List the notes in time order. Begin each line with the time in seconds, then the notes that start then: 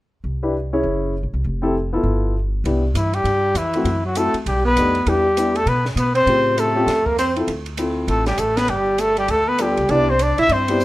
0.24 C2
0.43 D4 E4 G4 B4
0.73 C#4 E4 G#4 C#5
0.83 F#1
1.23 A#1
1.34 C2
1.44 F1
1.62 C4 E4 G4 A4
1.93 B3 E4 F4 A4
2.04 G1
2.64 C2 B3 D4 E4 G4, ride
2.94 G2 E3 E4, hi-hat pedal, ride
3.13 G3 G4, ride
3.24 G2, ride
3.54 F2 E3 E4, hi-hat pedal, ride
3.74 A3 C4 E4 F#4, ride
3.84 F#2, ride
4.05 F#3 F#4
4.15 A3 C4 E4 F#4 A4, hi-hat pedal, ride
4.34 muted upright bass stroke, ride
4.46 B1 G3 G4, ride
4.65 B3 B4
4.77 F2 A3 D4 D#4 G4, hi-hat pedal, ride
4.95 ride
5.06 E2 G3 B3 D4 E4 G4, ride
5.37 B3 D4 E4 G4, hi-hat pedal, ride
5.55 A3 A4, ride
5.66 B2 B3 B4, ride
5.86 snare
5.96 B2 B3 B4, hi-hat pedal, ride
6.15 C4 C5, ride
6.27 A2 C#3 C4 F4 G4, ride
6.58 A3 A4, hi-hat pedal, ride
6.75 C4 C#4 F4 G4
6.87 F2, snare, ride
7.06 A#3 A#4, kick
7.19 C4 C5, hi-hat pedal, ride
7.36 C4 E4 F4 A4, ride
7.47 D2, ride
7.66 ride
7.77 C4 E4 F4 A4, hi-hat pedal, ride
8.08 A1 A3 A4, ride
8.26 G3 G4, snare, ride
8.38 A1 A3 A4, hi-hat pedal, ride
8.56 B3 B4, snare, ride
8.68 G1 G3 G4, ride
8.98 A3 A4, hi-hat pedal, ride
9.17 G3 G4, ride
9.28 D2 A3 A4, ride
9.48 B3 B4
9.58 G3 B3 D4 F4 G4 A4, hi-hat pedal, ride
9.77 C#2, ride
9.89 C2 B3 D4 E4 G4 D5, ride
10.10 C4 C5
10.19 D4 D5, hi-hat pedal, ride
10.38 B1 E4 E5, ride
10.49 G2 C4 C5, ride
10.68 B3 D4 E4 G4, ride
10.80 hi-hat pedal